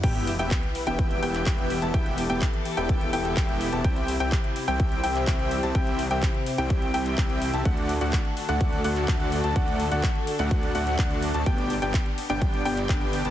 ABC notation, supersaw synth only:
X:1
M:4/4
L:1/16
Q:1/4=126
K:Em
V:1 name="Supersaw synth"
[B,EGeg]2 z [B,EGeg] z3 [B,EGeg]3 [B,EGeg]2 z3 [B,EGea] | [B,EGeg]2 z [B,EGeg] z3 [B,EGeg]3 [B,EGeg]2 z3 [B,EGea] | [EGeg]2 z [CEGeg] z3 [CEGeg]3 [CEGeg]2 z3 [CEGea] | [CEGeg]2 z [CEGeg] z3 [CEGeg]3 [CEGeg]2 z3 [CEGea] |
[A,DFdf]2 z [A,DFdf] z3 [A,DFdf]3 [A,DFdf]2 [A,DFdf]3 [A,DFda] | [A,DFdf]2 z [A,DFdf] z3 [A,DFdf]3 [A,DFdf]2 [A,D]3 [A,DFda] | [B,DGdg]2 z [B,DGdg] z3 [B,DGdg]3 [B,DGdg]2 [B,DGdg]3 [B,DGda] |]